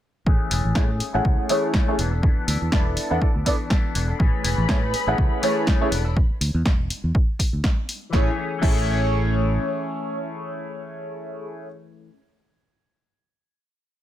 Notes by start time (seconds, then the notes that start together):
0.26 A1 E3 A3 C#4 G#4, kick
0.50 E1 E3 A3 C#4 G#4, open hi-hat, tambourine
0.65 A1, tambourine
0.75 A2 E3 A3 C#4 E4 G#4 C#5, kick, snare
0.89 A3 C#4 G#4
1.00 muted fingered electric bass stroke, open hi-hat, tambourine
1.13 A1 A3 C#4 E4 G#4 F#5, tambourine
1.25 C#2, kick
1.38 A3 C#4 G#4
1.49 E3 A3 C#4 E4 G#4 C#5, open hi-hat
1.63 tambourine
1.74 A3 C#4 G#4, kick, snare
1.88 A3 C#4 E4 G#4 C#5
1.98 E1 E3 B3 D4 A4, open hi-hat, tambourine
2.11 B3 D4 A4, tambourine
2.22 E3 B3 D4 A4, kick
2.37 muted fingered electric bass stroke
2.47 D2 E3 B3 D4 A4, open hi-hat, tambourine
2.61 E2, tambourine
2.72 E1 E3 B3 D4 E4 A4 D5, kick, snare
2.85 B3 D4 A4
2.96 muted fingered electric bass stroke, open hi-hat, tambourine
3.10 E2 B3 D4 E4 A4 F#5, tambourine
3.21 B3 D4 E4 A4 D5, kick
3.34 D2 B3 D4 A4
3.45 E3 B3 D4 E4 A4 D5, kick, open hi-hat, tambourine
3.59 tambourine
3.70 E3 B3 D4 A4, kick, snare
3.94 E1 E3 B3 D4 A4, open hi-hat, tambourine
4.08 B3 D4 A4, tambourine
4.19 A1 E3 A3 C#4 G#4 B4 B5, kick, tambourine
4.43 E1 E3 A3 C#4 G#4, open hi-hat, tambourine
4.58 A1, tambourine
4.69 A2 A3 C#4 E4 G#4 C#5, kick, snare
4.82 A3 C#4 G#4
4.93 muted fingered electric bass stroke, open hi-hat, tambourine
5.06 A1 A3 C#4 E4 G#4 F#5, tambourine
5.18 C#2, kick
5.31 A3 C#4 G#4
5.41 E3 A3 C#4 E4 G#4 C#5, open hi-hat, tambourine
5.57 tambourine
5.66 E3 A3 C#4 G#4, kick, snare, tambourine
5.81 A3 C#4 E4 G#4 C#5
5.91 E1 B3 D4 A4, open hi-hat, tambourine
6.05 D4 A4, tambourine
6.17 kick
6.30 muted fingered electric bass stroke
6.41 D2, open hi-hat
6.54 E2
6.65 E1, kick, snare
6.90 muted fingered electric bass stroke, open hi-hat
7.04 E2
7.15 kick
7.39 kick, open hi-hat
7.53 D2
7.64 kick, snare
7.89 open hi-hat
8.09 A1 E3 A3 C#4, kick
8.14 A3 E4 G#4 C#5, snare
8.19 C#4 G#4
8.59 A1 E3 A3 C#4 E4, kick
8.63 G#4 C#5, crash
8.68 C#4 G#4